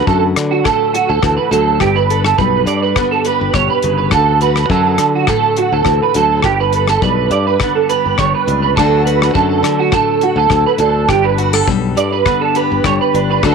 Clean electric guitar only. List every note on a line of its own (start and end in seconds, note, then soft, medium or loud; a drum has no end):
0.07 0.22 A4 medium
0.51 0.64 F#4 medium
0.65 0.92 A4 medium
0.94 1.08 F#4 medium
1.09 1.36 A4 medium
1.37 1.50 B4 medium
1.51 1.79 A4 medium
1.80 1.95 G4 medium
1.96 2.23 B4 medium
2.24 2.37 A4 medium
2.38 2.66 B4 medium
2.67 2.82 D5 medium
2.82 3.10 B4 medium
3.11 3.24 A4 medium
3.26 3.53 B4 medium
3.54 3.69 C#5 medium
3.70 3.96 B4 medium
3.98 4.11 B4 medium
4.12 4.39 A4 loud
4.42 4.69 B4 medium
4.70 4.85 A4 medium
4.86 5.13 A4 medium
5.15 5.28 F#4 medium
5.29 5.56 A4 medium
5.58 5.72 F#4 medium
5.73 6.00 A4 medium
6.02 6.15 B4 medium
6.16 6.43 A4 medium
6.44 6.59 G4 medium
6.60 6.87 B4 medium
6.89 7.02 A4 medium
7.02 7.30 B4 medium
7.32 7.46 D5 medium
7.47 7.74 B4 medium
7.75 7.88 A4 medium
7.89 8.17 B4 medium
8.19 8.33 C#5 medium
8.35 8.61 B4 medium
8.62 8.76 B4 medium
8.76 9.04 A4 medium
9.05 9.33 B4 medium
9.34 9.48 A4 medium
9.49 9.77 A4 medium
9.79 9.92 F#4 medium
9.93 10.21 A4 medium
10.23 10.37 F#4 medium
10.37 10.65 A4 medium
10.66 10.79 B4 medium
10.80 11.08 A4 medium
11.09 11.24 G4 medium
11.24 11.52 B4 medium
11.54 11.67 A4 medium
11.68 muted clean electric guitar stroke medium
11.97 12.12 D5 medium
12.12 12.40 B4 medium
12.41 12.54 A4 medium
12.56 12.83 B4 medium
12.85 12.99 C#5 medium
13.01 13.28 B4 medium
13.31 13.43 B4 medium
13.45 13.55 A4 medium